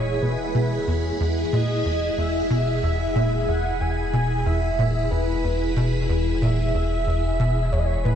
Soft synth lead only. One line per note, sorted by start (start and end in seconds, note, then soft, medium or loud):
0.00 0.23 C#5 medium
0.22 0.87 B4 medium
1.52 2.14 D#5 medium
2.18 3.50 E5 loud
3.48 3.82 F#5 loud
3.81 4.47 G#5 loud
4.46 5.10 E5 loud
5.11 6.05 B4 medium
6.42 7.74 E5 loud
7.72 7.80 C#5 loud
7.79 7.87 D#5 medium
7.86 8.04 C#5 loud
8.05 8.15 B4 loud